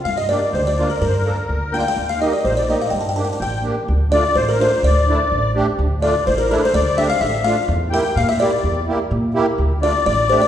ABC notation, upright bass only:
X:1
M:2/4
L:1/8
Q:1/4=126
K:Gm
V:1 name="Upright bass" clef=bass
G,,2 D,,2 | G,,2 D,,2 | E,,2 B,,,2 | G,,2 A,,,2 |
[K:Dm] D,,2 A,,,2 | D,,2 A,,,2 | D,,2 A,,,2 | D,,2 A,,,2 |
E,,2 B,,2 | E,,2 B,,2 | D,,2 A,,,2 |]